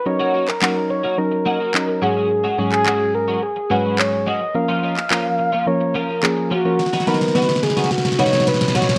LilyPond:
<<
  \new Staff \with { instrumentName = "Soft synth lead" } { \time 4/4 \key fis \major \tempo 4 = 107 cis''8. ais'8. cis''8 ais'4. gis'8~ | gis'8. gis'8. ais'8 gis'8 b'8 cis''8 dis''8 | eis''2 cis''8 ais'8 gis'8 fis'8~ | fis'8 ais'8 b'8 gis'8 fis'8 cis''8 b'8 cis''8 | }
  \new Staff \with { instrumentName = "Synth keys" } { \time 4/4 \key fis \major <fis cis' dis' ais'>8. r16 <fis cis' dis' ais'>8. r16 <fis cis' dis' ais'>8. r16 <fis cis' dis' ais'>8 <gis, fis gis cis' gis'>8~ | <gis, fis gis cis' gis'>16 r16 <gis, fis gis cis' gis'>4. r8 <gis, fis gis cis' gis'>4 r8 | <eis ais cis' ais'>8. r16 <eis ais cis' ais'>8. r16 <eis ais cis' ais'>8. r16 <eis ais cis' ais'>8 r16 <eis ais cis' ais'>16 | r8 <fis b dis' b'>4. r8 <fis b dis' cis''>4 r8 | }
  \new Staff \with { instrumentName = "Clean electric guitar" } { \time 4/4 \key fis \major r16 <fis ais dis' fis'>16 <fis ais dis' fis'>16 r16 <fis ais dis' fis'>16 r8 <fis ais dis' fis'>16 r8 <fis ais dis' fis'>16 <fis ais dis' fis'>16 r8 <fis gis cis' fis'>16 <fis gis cis' fis'>16 | r16 <fis gis cis' fis'>16 <fis gis cis' fis'>16 r16 <fis gis cis' fis'>16 r8 <fis gis cis' fis'>16 r8 <fis gis cis' fis'>16 <fis gis cis' fis'>16 r8 <fis gis cis' fis'>16 r16 | r16 <eis ais cis' eis'>16 <eis ais cis' eis'>16 r16 <eis ais cis' eis'>16 r8 <eis ais cis' eis'>16 r8 <eis ais cis' eis'>16 <eis ais cis' eis'>16 r8 <eis ais cis' eis'>16 <eis ais cis' eis'>16 | r16 <fis b dis' fis'>16 <fis b dis' fis'>16 r16 <fis b dis' fis'>16 r8 <fis b dis' fis'>16 r8 <fis b dis' fis'>16 <fis b dis' fis'>16 r8 <fis b dis' fis'>16 r16 | }
  \new DrumStaff \with { instrumentName = "Drums" } \drummode { \time 4/4 r8. hc16 hc4 r4 hc4 | r8. hc16 hc4 r4 hc4 | r8. hc16 hc4 r4 hc4 | sn32 sn32 sn32 sn32 sn32 sn32 sn32 sn32 sn32 sn32 sn32 sn32 sn32 sn32 sn32 sn32 sn32 sn32 sn32 sn32 sn32 sn32 sn32 sn32 sn32 sn32 sn32 sn32 sn32 sn32 sn16 | }
>>